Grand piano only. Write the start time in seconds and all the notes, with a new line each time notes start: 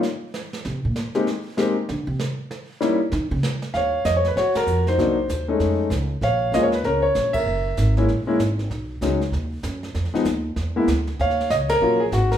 1.15 G#3 A#3 C4 D#4 G4
1.57 G#3 A#3 C4 D#4 G4
2.81 G3 A#3 C#4 D#4 E4
3.74 C#5 F5
4.05 D#5
4.17 C#5
4.27 B4
4.37 F#4 C#5
4.57 A#4
4.88 D#4 C5
4.98 F#3 A#3 D4 D#4
5.48 G#3 A3 C#4 D#4
6.23 C#5 F5
6.54 G#3 A#3 C#4 F4 D#5
6.63 C#5
6.74 B4
6.85 C#4 A#4
7.02 C#5
7.33 A#4 E5
7.97 G#3 A#3 C#4 E4
8.27 G#3 A#3 C#4 E4
9.02 F#3 G#3 C#4 D#4
10.14 F3 G#3 B3 D#4
10.76 G#3 A#3 B3 E4
11.21 C#5 F5
11.50 D#5
11.70 A#4
11.82 F#3 A#3 C#4 F4
12.00 G#4
12.13 F#4
12.32 A#4